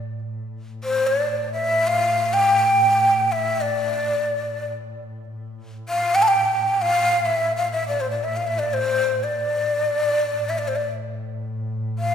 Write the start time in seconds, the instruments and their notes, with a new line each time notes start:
Already playing: double bass A2
0.25 double bass A2
0.84 ney C5
1.07 ney D5
1.53 ney E5
1.87 ney F5
2.33 ney G5
3.32 ney E5
3.61 ney D5
5.32 double bass A2
5.89 ney F5
6.15 ney G5
6.22 ney A5
6.28 ney G5
6.82 ney F5
7.26 ney E5
7.56 ney F5
7.72 ney E5
7.88 ney D5
8.00 ney C5
8.10 ney D5
8.24 ney E5
8.36 ney F5
8.47 ney E5
8.59 ney D5
8.73 ney C5
9.23 ney D5
10.38 double bass A2
10.49 ney E5
10.58 ney D5
10.68 ney C5
10.76 ney D5
11.99 ney F5